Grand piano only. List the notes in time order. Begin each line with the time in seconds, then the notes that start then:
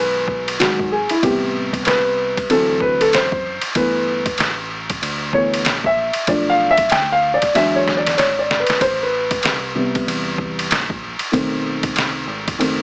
Already playing: D#3 F#3 G#3 B4
0.59 D#3 F#3 G#3 F#4
0.92 G#4
1.11 E4
1.23 C3 G3 B3 G4
1.87 B4
2.49 E3 F#3 C4 A4
2.82 B4
3.01 A4
3.14 C5
3.75 E3 A3 B3 B4
5.34 E3 A3 B3 C#5
5.86 E5
6.28 F3 A3 D4 D5
6.50 F5
6.71 E5
6.92 G5
7.12 F5
7.34 D5
7.54 F#3 G#3 D4 E5
7.76 C#5
7.97 D5
8.18 C#5
8.39 D5
8.60 B4
8.82 C5
9.03 B4
9.75 C3 G3 B3
11.32 D#3 A3 C4
12.59 D#3 A3 C4